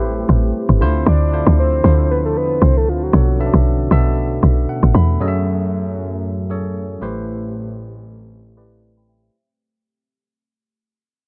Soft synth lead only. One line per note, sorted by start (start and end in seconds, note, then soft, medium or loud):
0.00 0.81 G4 medium
1.08 1.55 D5 loud
1.59 2.07 C5 loud
2.11 2.17 B4 loud
2.25 2.38 A4 medium
2.37 2.64 B4 loud
2.63 2.78 C5 loud
2.77 2.90 A4 medium
2.89 3.04 F4 medium
3.03 3.54 F#4 medium